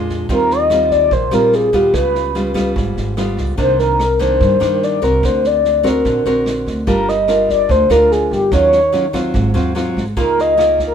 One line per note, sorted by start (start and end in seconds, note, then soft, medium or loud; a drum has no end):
0.00 0.27 F2 medium
0.00 0.27 A#2 soft
0.00 0.26 G#3 soft
0.00 0.26 D4 soft
0.00 0.27 F4 medium
0.09 kick soft
0.09 snare soft
0.29 1.07 D#2 medium
0.29 1.09 D#3 medium
0.29 0.67 G3 medium
0.29 0.67 C4 medium
0.29 0.68 F4 medium
0.29 0.53 A#4 loud
0.29 kick medium
0.29 snare soft
0.50 0.91 D#5 loud
0.50 snare soft
0.70 1.11 G3 medium
0.70 1.12 C4 soft
0.70 1.12 F4 medium
0.70 cross-stick medium
0.70 snare soft
0.91 1.14 D5 medium
0.91 kick soft
0.91 snare soft
1.11 1.30 A#1 loud
1.11 1.91 A#2 medium
1.11 1.35 C5 medium
1.11 kick soft
1.11 snare soft
1.31 1.70 A#1 medium
1.31 1.69 G3 medium
1.31 1.70 C4 medium
1.31 1.70 F4 medium
1.31 1.56 A#4 medium
1.31 cross-stick medium
1.31 snare soft
1.52 1.76 G#4 medium
1.52 snare soft
1.73 1.92 D#2 medium
1.73 2.31 G3 medium
1.73 2.32 B3 medium
1.73 2.32 F4 medium
1.73 1.94 G4 medium
1.73 kick soft
1.73 snare soft
1.94 2.72 C#2 medium
1.94 2.74 C#3 medium
1.94 2.72 B4 loud
1.94 kick medium
1.94 cross-stick medium
1.94 snare soft
2.15 snare soft
2.35 2.52 G3 medium
2.35 2.52 B3 soft
2.35 2.52 F4 medium
2.35 snare soft
2.54 3.13 G3 medium
2.54 3.13 B3 medium
2.54 3.14 F4 medium
2.54 kick soft
2.54 cross-stick medium
2.54 snare soft
2.76 2.95 G#1 medium
2.76 3.56 G#2 medium
2.76 kick medium
2.76 snare soft
2.97 3.35 G#1 medium
2.97 snare soft
3.17 3.56 G3 soft
3.17 3.57 B3 medium
3.17 3.57 F4 medium
3.17 cross-stick medium
3.17 snare soft
3.37 3.56 C#2 medium
3.37 kick soft
3.37 snare soft
3.57 4.36 C2 medium
3.57 4.38 C3 medium
3.57 3.99 D#3 medium
3.57 3.99 A#3 medium
3.57 3.99 D4 medium
3.57 3.78 C5 loud
3.57 kick medium
3.57 snare soft
3.79 4.23 A#4 medium
3.79 snare soft
3.99 cross-stick medium
3.99 snare soft
4.19 4.57 D#3 medium
4.19 4.58 A#3 medium
4.19 4.58 D4 medium
4.19 4.85 C5 medium
4.19 kick soft
4.19 snare soft
4.41 4.60 G2 loud
4.41 5.21 G2 medium
4.41 kick soft
4.41 snare soft
4.60 4.99 G2 medium
4.60 4.98 D#3 medium
4.60 4.99 A#3 medium
4.60 4.99 D4 medium
4.60 cross-stick medium
4.60 snare soft
4.82 5.05 D5 loud
4.82 snare soft
5.02 5.21 C2 medium
5.02 5.81 C4 medium
5.02 5.81 F#4 medium
5.02 5.81 A#4 medium
5.02 5.26 A#4 medium
5.02 kick soft
5.02 snare soft
5.23 6.01 D2 medium
5.23 6.03 D3 medium
5.23 5.48 C5 loud
5.23 kick medium
5.23 cross-stick medium
5.23 snare soft
5.44 5.90 D5 medium
5.44 snare soft
5.64 snare soft
5.83 6.22 C4 medium
5.83 6.22 F#4 medium
5.83 6.22 A#4 medium
5.83 kick soft
5.83 cross-stick medium
5.83 snare soft
5.88 6.27 A#4 medium
6.05 6.24 A#1 medium
6.05 6.85 D3 medium
6.05 kick soft
6.05 snare soft
6.26 6.64 A#1 medium
6.26 6.84 C4 medium
6.26 6.84 F#4 medium
6.26 6.84 A#4 medium
6.26 snare soft
6.46 cross-stick medium
6.46 snare soft
6.67 6.86 D2 medium
6.67 kick soft
6.67 snare soft
6.87 7.65 G1 medium
6.87 7.67 G3 medium
6.87 7.13 D4 medium
6.87 7.14 F4 medium
6.87 7.14 A#4 medium
6.87 7.10 A#4 loud
6.87 kick medium
6.87 snare soft
7.08 7.49 D#5 medium
7.08 snare soft
7.28 7.87 D4 soft
7.28 7.87 F4 soft
7.28 7.87 A#4 medium
7.28 cross-stick medium
7.28 snare soft
7.49 7.72 D5 medium
7.49 kick soft
7.49 snare soft
7.69 7.89 D2 medium
7.69 8.49 D3 medium
7.69 7.93 C5 medium
7.69 kick medium
7.69 snare soft
7.90 8.28 D2 medium
7.90 8.48 D4 medium
7.90 8.48 F4 medium
7.90 8.49 A#4 medium
7.90 8.13 A#4 medium
7.90 cross-stick medium
7.90 snare soft
8.11 8.32 G#4 medium
8.11 snare soft
8.31 8.50 G1 medium
8.31 8.51 G4 medium
8.31 kick soft
8.31 snare soft
8.52 9.30 D#2 medium
8.52 9.32 D#3 medium
8.52 8.78 F#3 medium
8.52 8.79 C#4 medium
8.52 8.79 F4 medium
8.52 9.31 C#5 loud
8.52 kick medium
8.52 cross-stick medium
8.52 snare soft
8.72 snare soft
8.92 9.05 F#3 medium
8.92 9.05 C#4 soft
8.92 9.05 F4 medium
8.92 snare soft
9.13 9.51 F#3 medium
9.13 9.51 C4 medium
9.13 9.52 F4 medium
9.13 kick soft
9.13 cross-stick medium
9.13 snare soft
9.34 9.53 G#1 medium
9.34 10.14 G#2 medium
9.34 kick medium
9.34 snare soft
9.54 9.93 D#2 medium
9.54 9.72 F#3 medium
9.54 9.72 C4 medium
9.54 9.72 F4 medium
9.54 snare soft
9.75 10.03 F#3 medium
9.75 10.03 C4 medium
9.75 10.03 F4 medium
9.75 cross-stick medium
9.75 snare soft
9.96 10.15 G#1 medium
9.96 kick soft
9.96 snare soft
10.17 10.94 C#2 medium
10.17 10.94 C#3 medium
10.17 10.54 A#3 medium
10.17 10.55 D#4 medium
10.17 10.55 F4 medium
10.17 10.42 A#4 loud
10.17 kick medium
10.17 snare soft
10.38 10.80 D#5 loud
10.38 snare soft
10.57 10.94 A#3 medium
10.57 10.94 D#4 medium
10.57 10.94 F4 medium
10.57 cross-stick medium
10.57 snare soft
10.79 kick soft
10.79 snare soft
10.87 10.94 A#4 medium